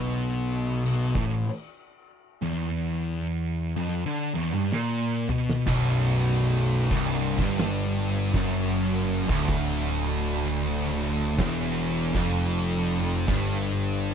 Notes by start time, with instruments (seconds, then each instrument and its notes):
Already playing: picked electric bass B1, distorted electric guitar B2
0.48 crash
0.86 crash
1.15 picked electric bass A1, distorted electric guitar A2, kick
1.45 snare, crash
2.42 distorted electric guitar E2
3.76 distorted electric guitar F2
4.05 distorted electric guitar D3
4.34 distorted electric guitar E2
4.53 distorted electric guitar G2
4.72 distorted electric guitar A#2, snare
5.29 distorted electric guitar B2, mid tom
5.49 snare
5.66 picked electric bass B0, distorted electric guitar B1, kick, crash
6.62 open hi-hat
6.91 picked electric bass C1, distorted electric guitar C2, kick
7.39 picked electric bass G1, distorted electric guitar G2, kick
7.58 snare, open hi-hat
8.34 picked electric bass F#1, distorted electric guitar F#2, kick, snare
8.53 open hi-hat
9.29 picked electric bass D1, distorted electric guitar D2, kick
9.48 kick, open hi-hat
10.44 open hi-hat
11.38 picked electric bass E1, distorted electric guitar E2, kick, snare, open hi-hat
12.14 picked electric bass F1, distorted electric guitar F2, kick, snare
12.34 open hi-hat
13.28 picked electric bass G1, distorted electric guitar G2, kick, open hi-hat